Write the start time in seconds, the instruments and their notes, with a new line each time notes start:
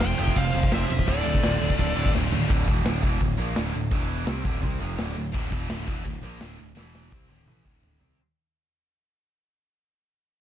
0.01 picked electric bass F1, distorted electric guitar F2 C3 F3 F4, lead electric guitar C5 G5, snare, ride
0.07 distorted electric guitar C4
0.11 distorted electric guitar C4 F4
0.18 picked electric bass F1, distorted electric guitar F2 C3 F3 C4 F4, lead electric guitar E5 G5, ride
0.25 distorted electric guitar C4 F4, kick
0.34 picked electric bass F1, distorted electric guitar F2 C3 C4 F4, lead electric guitar C5 F5, kick, ride
0.42 distorted electric guitar C4 F4
0.51 picked electric bass F1, distorted electric guitar F2 C3 F3 C4 F4, ride
0.58 distorted electric guitar C4 F4
0.63 distorted electric guitar C4 F4, kick
0.71 picked electric bass F1, distorted electric guitar F2 C3 F3 C4 F4, lead electric guitar C5 E5, snare, ride
0.81 distorted electric guitar C4 F4
0.89 picked electric bass E1, distorted electric guitar F2 C3, ride
0.99 kick
1.07 picked electric bass D1, distorted electric guitar D2 A2 D3 A3 F4, lead electric guitar A4 D5, kick, ride
1.14 distorted electric guitar A3 F4
1.22 distorted electric guitar D2 A2 A3 F4, ride
1.26 picked electric bass D1, distorted electric guitar A3
1.32 distorted electric guitar F4, kick
1.37 distorted electric guitar A3 F4
1.42 picked electric bass D1, distorted electric guitar D2 A2 D3 A3, snare, ride
1.47 distorted electric guitar A3 F4
1.56 distorted electric guitar D3 A3 F4
1.60 picked electric bass D1, distorted electric guitar D2 A2 F4, ride
1.66 distorted electric guitar A3, kick
1.71 distorted electric guitar A3 F4
1.77 picked electric bass D1, distorted electric guitar D2 A2 F4, kick, ride
1.82 distorted electric guitar A3
1.87 distorted electric guitar A3 F4
1.94 picked electric bass D1, distorted electric guitar D2 A2 D3 A3 F4, ride
2.03 distorted electric guitar A3 F4, kick
2.10 distorted electric guitar D2 A2 A3 F4
2.14 picked electric bass D1, distorted electric guitar D3 F4, snare
2.20 distorted electric guitar A3
2.26 distorted electric guitar A3 F4
2.31 picked electric bass D1, distorted electric guitar D2 A2 A3 F4, floor tom
2.42 distorted electric guitar A3 F4
2.48 picked electric bass D1, distorted electric guitar D2 A2 D3, kick, crash
2.67 picked electric bass E1, distorted electric guitar E2 B2 E3, kick
2.84 picked electric bass D1, distorted electric guitar D2 A2 D3, snare, crash
3.02 picked electric bass E1, distorted electric guitar E2 B2 E3, kick
3.20 picked electric bass D1, distorted electric guitar D2 A2, kick, crash
3.37 picked electric bass A#1, distorted electric guitar A#2 F3 A#3
3.55 picked electric bass D1, distorted electric guitar D2 A2 D3, snare, crash
3.74 picked electric bass D1, distorted electric guitar D2 A2
3.91 picked electric bass E1, distorted electric guitar E2 B2 E3, kick, crash
4.27 picked electric bass C2, distorted electric guitar C3 G3 C4, snare, crash
4.44 picked electric bass D1, distorted electric guitar D2 A2 D3, kick
4.62 picked electric bass C2, distorted electric guitar C3 G3 C4, kick, crash
4.79 picked electric bass F1, distorted electric guitar F2 C3 F3
4.97 picked electric bass D1, distorted electric guitar D2 A2 D3, snare, crash
5.16 picked electric bass D1, distorted electric guitar D2 A2
5.32 picked electric bass D1, distorted electric guitar D2 A2 D3, kick, crash
5.50 picked electric bass E1, distorted electric guitar E2 B2 E3, kick
5.69 picked electric bass D1, distorted electric guitar D2 A2 D3, snare, crash
5.87 picked electric bass E1, distorted electric guitar E2 B2 E3, kick
6.05 picked electric bass D1, distorted electric guitar D2 A2, kick, crash
6.23 picked electric bass A#1, distorted electric guitar A#2 F3 A#3
6.40 picked electric bass D1, distorted electric guitar D2 A2 D3, snare, crash
6.59 picked electric bass D1, distorted electric guitar D2 A2
6.77 picked electric bass E1, distorted electric guitar E2 B2 E3, snare
6.95 snare
7.11 picked electric bass C2, distorted electric guitar C3 G3 C4, kick
7.29 picked electric bass D1, distorted electric guitar D2 A2 D3, high tom
7.47 picked electric bass A1, distorted electric guitar A2 E3 A3, mid tom
7.65 picked electric bass D1, distorted electric guitar D2 A2 D3, kick
7.83 floor tom
8.00 picked electric bass C2, distorted electric guitar C3 G3 C4, floor tom